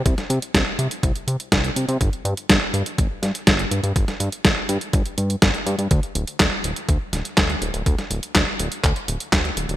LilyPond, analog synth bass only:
\new Staff \with { instrumentName = "Analog synth bass" } { \clef bass \time 4/4 \key g \mixolydian \tempo 4 = 123 c,16 r16 c16 r16 c,16 r16 c16 r16 c,16 r16 c16 r16 c,16 r16 c16 c16 | g,,16 r16 g,16 r16 g,,16 r16 g,16 r16 g,,16 r16 g,16 r16 g,,16 r16 g,16 g,16 | g,,16 r16 g,16 r16 g,,16 r16 g,16 r16 g,,16 r16 g,16 r16 g,,16 r16 g,16 g,16 | d,16 r16 d,,16 r16 d,16 r16 d,,16 r16 d,16 r16 d,,16 r16 d,16 r16 d,,16 d,,16 |
d,16 r16 d,,16 r16 d,16 r16 d,,16 r16 d,16 r16 d,,16 r16 d,16 r16 d,,16 d,,16 | }